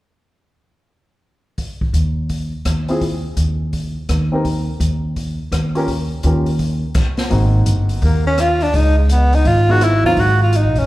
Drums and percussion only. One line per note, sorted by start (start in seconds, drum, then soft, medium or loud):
1.58 kick soft
1.58 open hi-hat soft
1.81 kick soft
1.94 closed hi-hat soft
2.29 kick soft
2.29 open hi-hat soft
2.65 cross-stick soft
2.65 closed hi-hat soft
2.88 open hi-hat soft
3.01 kick soft
3.01 open hi-hat soft
3.37 closed hi-hat soft
3.73 kick soft
3.73 open hi-hat soft
4.09 cross-stick soft
4.09 closed hi-hat soft
4.45 kick soft
4.45 open hi-hat soft
4.80 closed hi-hat soft
5.16 kick soft
5.16 open hi-hat soft
5.52 cross-stick medium
5.52 closed hi-hat soft
5.75 open hi-hat soft
5.88 kick soft
5.88 open hi-hat soft
6.23 closed hi-hat soft
6.46 open hi-hat soft
6.59 kick soft
6.59 open hi-hat soft
6.95 kick medium
6.95 cross-stick medium
6.95 closed hi-hat soft
6.95 crash medium
7.17 snare soft
7.17 open hi-hat soft
7.31 kick soft
7.31 open hi-hat soft
7.66 closed hi-hat medium
7.89 open hi-hat soft
8.02 kick soft
8.02 open hi-hat soft
8.38 cross-stick medium
8.38 closed hi-hat soft
8.61 open hi-hat soft
8.74 kick soft
8.74 open hi-hat soft
9.09 closed hi-hat medium
9.33 open hi-hat soft
9.45 kick soft
9.45 open hi-hat soft
9.81 cross-stick medium
9.81 closed hi-hat soft
10.17 kick soft
10.17 open hi-hat soft
10.53 closed hi-hat soft
10.76 open hi-hat soft